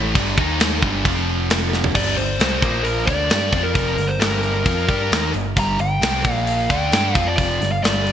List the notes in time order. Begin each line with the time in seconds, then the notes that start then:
Already playing: A1 A2 E3 A3
0.14 G1 G2 D3 G3, kick, crash
0.36 D#2 D#3 A#3 D#4, kick
0.60 snare, crash
0.82 G1 G2 D3 G3, kick
1.05 F1 F2 C3 F3, kick, crash
1.50 snare, crash
1.73 snare
1.84 floor tom
1.95 G1 G2 D3 G3 D5, kick, crash
2.17 G1 G2 D3 C5, open hi-hat
2.39 C2 C3 G3 C4, snare, open hi-hat
2.61 A#1 A#2 F3 A#3, kick, open hi-hat
2.84 A#4, open hi-hat
3.06 D2 D3 A3 D4 D5, kick, open hi-hat
3.30 G2 G3 D4 G4, snare, open hi-hat
3.52 F2 F3 C4 F4, kick, open hi-hat
3.64 A#4
3.74 F1 F2 C3 F3 A#4, kick, open hi-hat
3.97 G1 G2 D3, snare, open hi-hat
4.08 C5
4.19 G1 G2 D3 G3 A#4, snare, open hi-hat
4.43 open hi-hat
4.64 F2 F3 C4 F4, kick, open hi-hat
4.88 G2 G3 D4 G4, kick, open hi-hat
5.11 D#2 D#3 A#3 D#4, snare, open hi-hat
5.34 G1 G2 D3, open hi-hat
5.56 G1 G2 D3 G3 A#5, kick, open hi-hat
5.79 G1 G2 D3 G5, open hi-hat
6.01 C2 C3 G3 C4, snare, open hi-hat
6.24 A#1 A#2 F3 A#3, kick, open hi-hat
6.33 F5
6.47 F5, open hi-hat
6.70 D2 D3 A3 D4 G5, kick, open hi-hat
6.92 G2 G3 D4 G4, snare, open hi-hat
7.15 F2 F3 C4 F4 F5, kick, open hi-hat
7.28 D5
7.37 F1 F2 C3 F3 D5, kick, open hi-hat
7.61 G1 G2 D3, snare, open hi-hat
7.72 F5
7.84 G1 G2 D3 G3 D5, snare, open hi-hat
8.07 open hi-hat